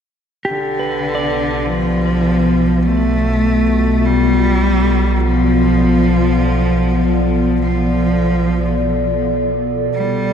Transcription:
0.44 9.89 B1 medium
0.44 9.96 B2 medium
0.44 1.67 D3 medium
0.44 2.92 G4 soft
0.79 3.25 B4 soft
0.91 9.95 B3 medium
1.15 3.57 D5 soft
1.65 2.88 F3 medium
2.86 4.06 A3 medium
2.91 9.95 F4 medium
3.16 10.33 A4 medium
4.05 5.16 G3 medium
4.75 10.33 D5 medium
5.16 5.24 G3 medium
5.22 7.60 F3 medium
7.61 9.33 F3 medium
9.94 10.33 C2 medium
9.94 10.33 C3 medium
9.94 10.33 G3 medium
10.28 10.33 D4 medium

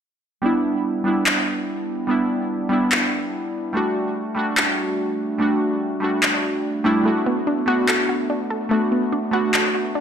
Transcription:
0.42 1.03 G3 medium
0.42 1.03 B3 medium
0.42 1.04 D4 medium
0.46 1.05 E4 medium
1.04 2.06 G3 medium
1.04 2.07 B3 medium
1.04 2.07 D4 medium
1.08 2.08 E4 medium
1.26 clap medium
2.07 2.68 G3 medium
2.07 2.69 B3 medium
2.07 2.69 D4 medium
2.11 2.70 E4 medium
2.69 3.71 G3 medium
2.69 3.72 B3 medium
2.69 3.73 D4 medium
2.73 3.73 E4 medium
2.92 clap medium
3.73 4.34 G3 medium
3.73 4.34 A3 medium
3.73 4.35 D4 medium
3.73 4.36 F#4 medium
4.35 5.37 G3 medium
4.35 5.38 A3 medium
4.35 5.38 D4 medium
4.39 5.39 F#4 medium
4.57 clap medium
5.38 5.99 G3 medium
5.38 6.00 A3 medium
5.38 6.00 D4 medium
5.38 6.01 F#4 medium
6.00 6.82 G3 medium
6.00 6.83 A3 medium
6.00 6.83 D4 medium
6.00 6.84 F#4 medium
6.23 clap medium
6.84 7.03 G3 loud
6.84 7.02 A3 medium
6.84 7.04 D4 medium
6.84 7.04 E4 loud
7.04 7.65 A3 medium
7.04 7.12 A3 medium
7.04 7.65 B3 medium
7.04 7.66 D4 medium
7.08 7.67 F#4 medium
7.26 7.31 B3 medium
7.47 7.51 D4 medium
7.66 8.68 A3 medium
7.66 8.69 B3 medium
7.66 8.69 D4 medium
7.66 7.72 F#4 loud
7.70 8.70 F#4 medium
7.88 7.95 A4 medium
7.88 clap medium
8.09 8.13 F#4 medium
8.30 8.34 D4 medium
8.50 8.55 A4 medium
8.69 9.30 A3 medium
8.69 8.78 A3 medium
8.69 9.31 B3 medium
8.69 9.31 D4 medium
8.73 9.32 F#4 medium
8.92 8.96 B3 medium
9.12 9.17 D4 medium
9.31 10.01 A3 medium
9.31 10.01 B3 medium
9.31 10.01 D4 medium
9.31 9.38 F#4 loud
9.35 10.01 F#4 medium
9.54 9.60 A4 medium
9.54 clap medium
9.75 9.79 F#4 medium
9.95 10.00 D4 medium

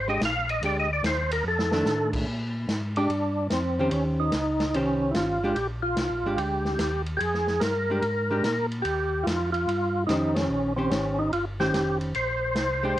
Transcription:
0.00 0.19 G#1 medium
0.08 0.20 G#3 medium
0.08 0.20 D4 medium
0.08 0.20 G4 medium
0.08 0.22 D#5 medium
0.20 0.61 A#1 loud
0.20 snare medium
0.20 hi-hat pedal medium
0.20 ride medium
0.25 0.50 F5 loud
0.49 0.63 D#5 medium
0.49 ride soft
0.62 1.02 D2 medium
0.62 0.87 G#3 medium
0.62 0.88 D4 medium
0.62 0.88 G4 medium
0.62 0.77 D5 loud
0.62 ride medium
0.80 0.91 D#5 medium
0.93 1.05 D5 loud
1.03 1.43 D#2 loud
1.03 1.31 C5 medium
1.03 snare medium
1.03 hi-hat pedal medium
1.03 ride medium
1.31 1.45 A#4 medium
1.31 ride medium
1.44 1.84 F2 loud
1.44 2.11 A4 medium
1.59 snare medium
1.72 2.24 D#3 medium
1.72 2.25 A3 medium
1.72 2.25 D4 medium
1.72 snare medium
1.85 2.25 A2 medium
1.85 snare medium
1.85 hi-hat pedal medium
2.13 kick medium
2.13 crash medium
2.27 2.67 A#2 medium
2.68 3.08 G#2 medium
2.68 snare medium
2.68 hi-hat pedal medium
2.68 ride medium
2.96 3.08 G#3 medium
2.96 3.47 D4 medium
2.96 3.09 D4 medium
2.96 3.09 G4 medium
2.96 ride soft
3.09 3.49 G2 medium
3.09 ride medium
3.50 3.90 F2 medium
3.50 3.93 C4 medium
3.50 snare medium
3.50 hi-hat pedal medium
3.50 ride medium
3.79 4.30 D#3 medium
3.79 4.31 C#4 medium
3.79 4.31 G4 medium
3.79 4.31 C5 medium
3.91 4.31 D#2 medium
3.91 4.04 C#4 medium
3.91 ride medium
4.20 4.76 D#4 medium
4.32 4.72 C#2 medium
4.32 snare medium
4.32 hi-hat pedal soft
4.32 ride medium
4.60 snare medium
4.60 ride soft
4.73 5.13 C2 medium
4.73 5.37 D#3 medium
4.73 5.11 C#4 medium
4.73 5.37 C#4 medium
4.73 5.38 G4 medium
4.73 5.38 C5 medium
4.73 ride medium
5.11 5.54 G1 medium
5.11 5.15 E4 medium
5.11 5.57 F4 medium
5.11 snare medium
5.11 hi-hat pedal soft
5.11 ride medium
5.44 5.55 G#3 medium
5.44 5.55 D4 medium
5.44 5.56 G4 medium
5.55 5.96 A#1 medium
5.55 5.67 G4 loud
5.55 ride medium
5.82 6.39 F4 medium
5.96 6.10 C2 medium
5.96 snare medium
5.96 hi-hat pedal medium
5.96 ride medium
6.10 6.24 A#1 medium
6.23 6.37 G#1 medium
6.23 6.77 G#3 medium
6.23 6.77 D4 medium
6.23 6.78 G4 medium
6.36 6.77 D2 medium
6.36 7.02 G4 medium
6.36 ride medium
6.65 snare soft
6.78 7.19 D#2 medium
6.78 snare medium
6.78 hi-hat pedal medium
6.78 ride medium
7.06 ride soft
7.17 7.60 F2 medium
7.17 7.21 G4 medium
7.17 7.62 G#4 medium
7.17 ride medium
7.34 snare soft
7.47 snare soft
7.60 8.01 G2 medium
7.60 8.67 A#4 medium
7.60 snare medium
7.60 hi-hat pedal medium
7.60 ride medium
7.90 8.02 G#3 medium
7.90 8.02 D4 medium
7.90 8.02 G4 medium
8.02 8.42 G#2 medium
8.02 ride medium
8.31 8.43 G#3 medium
8.31 8.43 D4 medium
8.31 8.43 G4 medium
8.44 8.84 A#2 medium
8.44 snare medium
8.44 hi-hat pedal medium
8.44 ride medium
8.72 ride soft
8.82 9.25 D#2 medium
8.82 9.26 G4 medium
8.82 ride medium
9.23 9.66 F2 medium
9.23 9.50 F4 medium
9.23 snare medium
9.23 hi-hat pedal medium
9.23 ride medium
9.52 10.04 F4 loud
9.52 ride soft
9.67 10.07 G2 medium
9.67 ride medium
10.07 10.48 F2 medium
10.07 10.72 D#3 medium
10.07 10.72 C#4 medium
10.07 10.36 D#4 medium
10.07 10.72 G4 medium
10.07 10.72 C5 medium
10.07 snare medium
10.07 hi-hat pedal medium
10.07 ride medium
10.34 10.73 C#4 medium
10.34 snare medium
10.34 ride medium
10.49 10.89 A#1 medium
10.76 11.29 D#3 medium
10.76 10.91 C4 medium
10.76 11.30 C#4 medium
10.76 11.30 G4 medium
10.76 11.30 C5 medium
10.90 11.31 G#1 medium
10.90 11.19 C#4 medium
10.90 snare medium
10.90 hi-hat pedal medium
10.90 ride medium
11.19 11.31 D#4 medium
11.32 11.72 G1 medium
11.32 11.45 F4 medium
11.32 ride medium
11.60 12.12 D#3 medium
11.60 12.12 C#4 medium
11.60 11.98 G4 medium
11.60 12.12 G4 medium
11.60 12.12 C5 medium
11.60 snare medium
11.73 12.13 F1 medium
11.73 snare medium
11.73 hi-hat pedal medium
11.73 ride medium
12.01 ride soft
12.14 12.55 A#1 medium
12.14 13.00 C5 loud
12.14 ride medium
12.55 12.95 C2 medium
12.55 snare medium
12.55 hi-hat pedal medium
12.55 ride medium
12.83 12.95 G#3 medium
12.83 12.96 D4 medium
12.83 12.96 G4 medium
12.96 13.00 D2 medium

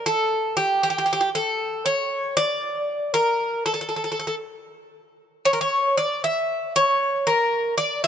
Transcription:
0.06 0.55 A4 medium
0.57 0.82 G4 medium
0.83 0.89 G4 medium
0.90 0.97 G4 medium
0.98 1.05 G4 medium
1.06 1.12 G4 medium
1.13 1.19 G4 medium
1.21 1.29 G4 medium
1.35 1.85 A4 medium
1.86 2.36 C#5 medium
2.37 3.14 D5 medium
3.14 3.65 A#4 medium
3.66 3.73 A4 medium
3.74 3.80 A4 medium
3.81 3.88 A4 soft
3.89 3.95 A4 soft
3.96 4.03 A4 soft
4.04 4.10 A4 soft
4.12 4.18 A4 soft
4.19 4.26 A4 soft
4.27 4.34 A4 medium
5.45 5.52 C#5 medium
5.53 5.60 A#4 medium
5.61 5.95 C#5 medium
5.97 6.21 D5 medium
6.24 6.71 E5 medium
6.76 7.28 C#5 loud
7.27 7.74 A#4 medium
7.78 8.01 D5 medium
8.04 8.07 E5 loud

